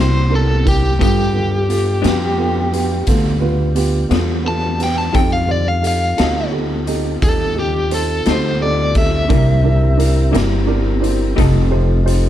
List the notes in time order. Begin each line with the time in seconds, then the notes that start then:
Already playing: C2 G3 A#3 C4 D4 E4 G4 C5
0.00 C3 C5
0.30 D4 E4 A#4
0.35 A4
0.64 D4 E4 A#4, kick, closed hi-hat
0.68 G4
0.99 G2 F3 B3 D4 F4 G4 A4, kick, closed hi-hat
1.03 G4
1.33 B3 F4 A4
1.69 B3 F4 A4, closed hi-hat
2.02 F2 G2 F3 B3 D4 F4 G4, snare, closed hi-hat
2.38 B3 F4 A4
2.72 B3 F4 G4, closed hi-hat
3.07 D2 B3 F4 A4, kick, snare, closed hi-hat
3.40 B3 F4 B4
3.75 B3 F4 G4, closed hi-hat
4.09 E2 G2 F3 B3 D4 F4 A4, snare, closed hi-hat
4.43 B3 F4 A4
4.48 A5
4.78 B3 F4 G4, snare, closed hi-hat
4.84 G5
4.98 A5
5.12 F2 F3 C4 D#4 F4 G4 A4 G5, kick, closed hi-hat
5.33 F5
5.47 D#4 G4 C5
5.51 D5
5.68 F5
5.82 D#4 G4 A4, closed hi-hat
5.87 F5
6.17 D2 C4 D#4 G4 A4, snare, closed hi-hat
6.21 F3
6.51 D#4 G4 A4
6.87 D#4 G4 A4, closed hi-hat
7.21 D#2 D#4 G4 A4, kick, closed hi-hat
7.55 D#4 G4 A4
7.59 G4
7.90 D#4 G4 A4 C5, closed hi-hat
8.25 D2 F3 C4 D#4 G4 A4 C5, snare, closed hi-hat
8.61 D#4 G4 A4 D5
8.95 D#4 G4 A4 E5, kick, snare, closed hi-hat
9.28 C2 C3 G3 A#3 C4 D4 E4 G4 A#4, kick, closed hi-hat
9.33 E4
9.64 D4 E4 A#4
9.97 D4 E4 A#4, closed hi-hat
10.31 G1 C3 G3 A#3 D4 E4 A#4, closed hi-hat
10.36 snare
10.67 D4 E4 A#4
11.01 D4 E4 C5, closed hi-hat
11.35 F1 F3 C4 D#4 F4 G4 A4, kick, closed hi-hat
11.40 snare
11.69 D#4 G4 C5
12.04 D#4 G4 C5, closed hi-hat